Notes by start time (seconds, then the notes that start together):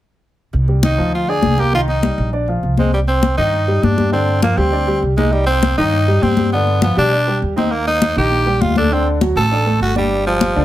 0.53 C2, high conga
0.68 G3 G4, high conga
0.82 D#3 D#4, high conga
0.98 D2 F3 F4
1.13 F4, high conga
1.27 D4 G#4 D5, high conga
1.42 C2, high conga
1.58 A#3 G4 A#4, high conga
1.73 D#3 D#4 F4, high conga
1.88 D#4, high conga
2.03 G3 G4, high conga
2.18 A#1, high conga
2.33 D4 D5, high conga
2.48 F3 F4, high conga
2.63 C2, high conga
2.77 G#3 C4 C5, high conga
2.93 G3, high conga
3.07 C4 C5, high conga
3.23 high conga
3.37 G2 D#3 D#4
3.53 high conga
3.68 G3 G4, high conga
3.83 G2 D4, high conga
3.98 G3 G4, high conga
4.12 D3 C4 D4, high conga
4.28 high conga
4.42 F3 A#3 F4, high conga
4.57 D2 G3 C4 G4, high conga
4.72 D4 D5, high conga
4.87 G3 G4, high conga
5.02 C2, high conga
5.17 G#3 D#4 D#5, high conga
5.32 G3, high conga
5.46 C4 C5, high conga
5.63 high conga
5.77 G2 D#3 D#4
5.93 high conga
6.08 G3 G4, high conga
6.22 G2 C4, high conga
6.37 G3 G4, high conga
6.52 D3 B3 D4, high conga
6.67 high conga
6.82 F3 B3 F4, high conga
6.97 B2 G3 D4 G4, high conga
7.12 D4 D5, high conga
7.27 G3 G4, high conga
7.42 D#2, high conga
7.56 C4 D#4 D#5, high conga
7.72 A#3, high conga
7.87 A#3 D#4 A#4, high conga
8.02 high conga
8.16 A#1 D#3 D#4 G4
8.32 high conga
8.46 G3 G4, high conga
8.61 D2 F4, high conga
8.76 A3 D4 A4, high conga
8.92 D3 C4 D4, high conga
9.07 high conga
9.21 F#3 F#4, high conga
9.36 A1 A3 A4, high conga
9.52 D4 D5, high conga
9.66 A3 A4, high conga
9.80 G1 F#4, high conga
9.96 G3 D4 D5, high conga
10.11 high conga
10.26 F3 G3 G4, high conga
10.41 high conga
10.56 D2 D3 D4